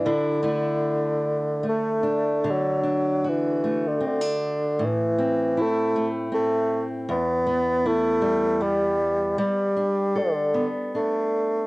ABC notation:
X:1
M:3/4
L:1/16
Q:1/4=77
K:Dmix
V:1 name="Steel-string acoustic guitar"
[D,E]2 [A,DE]6 A,2 D2 | D,2 D2 F2 A,2 C D3 | A,,2 C2 E2 A,2 C4 | E,,2 B,2 E2 G,2 B,4 |
G,2 D2 A2 B,2 D4 |]
V:2 name="Bassoon" clef=bass
D,8 A,4 | F,4 E,3 D, D,4 | E,4 A,3 z A,3 z | B,4 A,4 G,4 |
G,4 D,3 z A,4 |]